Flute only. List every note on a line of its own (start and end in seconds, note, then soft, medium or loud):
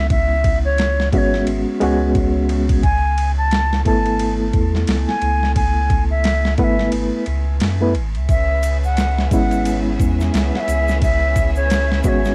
0.11 0.59 E5 loud
0.65 1.09 C#5 loud
1.13 1.19 E5 medium
1.18 1.44 C#5 loud
2.84 3.32 G#5 loud
3.38 3.82 A5 loud
3.87 4.34 A5 loud
5.08 5.52 G#5 loud
5.56 6.04 G#5 loud
6.11 6.54 E5 loud
6.59 6.65 F#5 medium
6.64 6.90 E5 medium
8.30 8.77 E5 loud
8.85 9.28 F#5 loud
9.33 9.80 F#5 loud
10.55 10.61 F#5 medium
10.60 10.98 E5 loud
11.03 11.50 E5 loud
11.56 12.00 C#5 loud
12.05 12.35 C#5 medium
12.05 12.09 E5 medium